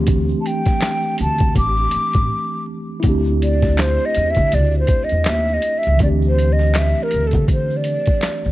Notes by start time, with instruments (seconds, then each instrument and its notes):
Already playing: upright bass D2, tine electric piano E3 A3 C4 D4 G4
0.07 kick, closed hi-hat, shaker
0.28 shaker
0.41 flute A5
0.46 flute G5, closed hi-hat
0.66 kick, snare, closed hi-hat, shaker
0.81 finger snap, snare, clap, closed hi-hat, shaker
1.02 shaker
1.18 upright bass D2, flute A5, closed hi-hat
1.38 kick, closed hi-hat, shaker
1.55 upright bass A1, flute D6, kick, closed hi-hat, shaker
1.77 shaker
1.91 muted upright bass stroke, closed hi-hat
2.13 upright bass A1, kick, closed hi-hat, shaker
3.00 tine electric piano A3 E4, kick, closed hi-hat
3.04 upright bass D2, tine electric piano C4 D4, shaker
3.09 tine electric piano G4
3.25 shaker
3.42 flute D5, closed hi-hat, shaker
3.62 kick, snare, shaker
3.78 flute C5, finger snap, snare, clap, closed hi-hat, shaker
3.98 shaker
4.05 flute D#5
4.14 upright bass E2, closed hi-hat, shaker
4.30 flute E5
4.35 upright bass D3, kick, closed hi-hat, shaker
4.51 upright bass D2, flute D5, closed hi-hat, shaker
4.73 shaker
4.79 flute C5
4.87 kick, closed hi-hat, shaker
5.04 flute D#5
5.09 upright bass E2, closed hi-hat, shaker
5.25 upright bass D#2, flute E5, finger snap, snare, clap, closed hi-hat, shaker
5.48 shaker
5.54 flute D#5
5.62 closed hi-hat
5.78 flute E5
5.83 upright bass C#2, closed hi-hat, shaker
5.97 tine electric piano E3 A3, kick, closed hi-hat
6.01 upright bass D2, tine electric piano C4 D4, flute D5, shaker
6.06 tine electric piano G4
6.22 shaker
6.28 flute C5
6.39 closed hi-hat, shaker
6.53 flute D#5
6.58 snare, shaker
6.75 flute E5, finger snap, snare, clap, closed hi-hat, shaker
6.95 shaker
7.03 flute A#4
7.11 upright bass D2, closed hi-hat, shaker
7.27 flute A4
7.31 upright bass D3, kick, closed hi-hat, shaker
7.48 flute C5, kick, closed hi-hat, shaker
7.70 shaker
7.77 flute D5
7.84 closed hi-hat, shaker
8.06 kick, closed hi-hat, shaker
8.22 finger snap, snare, clap, closed hi-hat, shaker
8.44 upright bass D2, shaker